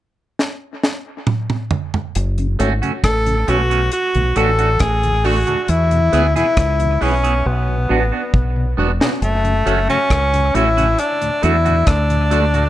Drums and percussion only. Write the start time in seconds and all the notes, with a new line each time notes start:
0.39 snare
0.83 snare
1.27 mid tom
1.50 mid tom
1.71 floor tom
1.94 floor tom
2.15 closed hi-hat
2.38 closed hi-hat
2.60 closed hi-hat
2.83 closed hi-hat
3.04 kick, cross-stick, closed hi-hat
3.26 closed hi-hat
3.48 closed hi-hat
3.71 closed hi-hat
3.92 closed hi-hat
4.14 closed hi-hat
4.36 closed hi-hat
4.59 closed hi-hat
4.79 kick, cross-stick, closed hi-hat
5.03 closed hi-hat
5.24 open hi-hat
5.47 closed hi-hat
5.68 closed hi-hat
5.91 closed hi-hat
6.13 closed hi-hat
6.36 closed hi-hat
6.57 kick, cross-stick, closed hi-hat
6.80 closed hi-hat
7.01 open hi-hat
7.24 closed hi-hat
8.34 kick
9.01 snare
9.22 closed hi-hat
9.45 closed hi-hat
9.67 closed hi-hat
9.90 closed hi-hat
10.10 kick, cross-stick, closed hi-hat
10.34 closed hi-hat
10.55 closed hi-hat
10.78 closed hi-hat
10.98 closed hi-hat
11.21 closed hi-hat
11.43 closed hi-hat
11.66 closed hi-hat
11.87 kick, cross-stick, closed hi-hat
12.10 closed hi-hat
12.31 closed hi-hat
12.54 closed hi-hat